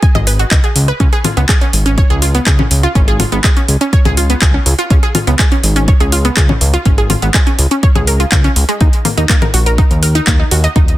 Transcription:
0.03 G#5, kick, closed hi-hat
0.15 G#1 D#5, closed hi-hat, low conga
0.27 B4, open hi-hat
0.39 F#4, closed hi-hat
0.51 C#2 D#5, kick, clap, closed hi-hat
0.64 G#4, closed hi-hat
0.76 C#2, open hi-hat
0.88 B4, closed hi-hat
1.00 C#2 C#4, kick, closed hi-hat
1.13 G#4, closed hi-hat
1.24 F4, open hi-hat, low conga
1.37 C#2 B3, closed hi-hat
1.49 G#4, kick, clap, closed hi-hat
1.61 C#4, closed hi-hat
1.73 G#1, open hi-hat
1.86 C#4, closed hi-hat
1.98 C#5, kick, closed hi-hat
2.10 C#2 G#4, closed hi-hat
2.22 F4, open hi-hat
2.35 B3, closed hi-hat
2.46 C#2 G#4, kick, clap, closed hi-hat
2.59 C#4, low conga
2.71 C#2, open hi-hat
2.83 F4, closed hi-hat
2.95 G#1 C#4, kick, closed hi-hat
3.08 G#4, closed hi-hat
3.20 F4, open hi-hat, low conga
3.32 G#1 B3, closed hi-hat
3.44 G#4, kick, clap, closed hi-hat
3.57 C#4, closed hi-hat
3.68 C#2, open hi-hat
3.81 C#4, closed hi-hat
3.93 C#5, kick, closed hi-hat
4.05 C#2 G#4, closed hi-hat, low conga
4.17 F4, open hi-hat
4.30 B3, closed hi-hat
4.42 C#2 G#4, kick, clap, closed hi-hat
4.54 C#4
4.66 C#2, open hi-hat
4.79 F4, closed hi-hat
4.90 C#2 C#4, kick, closed hi-hat
5.03 G#4, closed hi-hat
5.15 F4, open hi-hat, low conga
5.27 C#2 B3, closed hi-hat
5.39 G#4, kick, clap, closed hi-hat
5.52 C#4, closed hi-hat
5.63 G#1, open hi-hat
5.76 C#4, closed hi-hat
5.88 C#5, kick, closed hi-hat
6.00 C#2 G#4, closed hi-hat
6.12 F4, open hi-hat
6.25 B3, closed hi-hat
6.37 C#2 G#4, kick, clap, closed hi-hat
6.49 C#4, low conga
6.61 C#2, open hi-hat
6.74 F4, closed hi-hat
6.85 G#1 C#4, kick, closed hi-hat
6.98 G#4, closed hi-hat
7.10 F4, open hi-hat, low conga
7.22 G#1 B3, closed hi-hat
7.34 G#4, kick, clap, closed hi-hat
7.47 C#4, closed hi-hat
7.59 C#2, open hi-hat
7.71 C#4, closed hi-hat
7.83 C#5, kick, closed hi-hat
7.95 C#2 G#4, closed hi-hat, low conga
8.07 A#4, open hi-hat
8.20 F4, closed hi-hat
8.32 C#2 F4, kick, clap, closed hi-hat
8.44 C#4, closed hi-hat
8.56 C#2, open hi-hat
8.69 G#3, closed hi-hat
8.81 D#2 D#4, kick, closed hi-hat
8.93 closed hi-hat
9.05 A#3, open hi-hat, low conga
9.17 D#2 D#4, closed hi-hat
9.29 A#3, kick, clap, closed hi-hat
9.42 A#4, closed hi-hat, low conga
9.54 A#1 F#4, open hi-hat
9.66 A#4, closed hi-hat
9.78 D#4, kick, closed hi-hat
9.91 D#2, closed hi-hat
10.03 A#4, open hi-hat
10.15 D#4, closed hi-hat
10.27 D#2 A#3, kick, clap, closed hi-hat
10.40 D#4
10.51 D#2 F#4, open hi-hat
10.64 D#5, closed hi-hat
10.76 D#1 D#4, kick, closed hi-hat
10.88 closed hi-hat

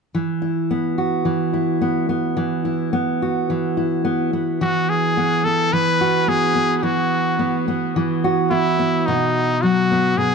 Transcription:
0.14 E3
0.42 E4
0.71 B3
0.98 F#4
1.25 E3
1.54 E4
1.82 B3
2.09 B3
2.37 E3
2.65 E4
2.93 B3
3.22 F#4
3.50 E3
3.77 E4
4.05 B3
4.33 B3
4.61 E3 F#4
4.90 G#4
5.17 B3
5.45 B3 A4
5.73 E3 B4
6.01 F#4
6.28 B3 G#4
6.56 B3
6.77 G#4
6.83 E3 F#4
7.39 B3
7.68 B3
7.96 E3
8.24 F#4
8.51 B3 E4
8.79 B3
9.06 B2 D#4
9.62 F#3 F#4
9.92 B3
10.18 B2 G#4

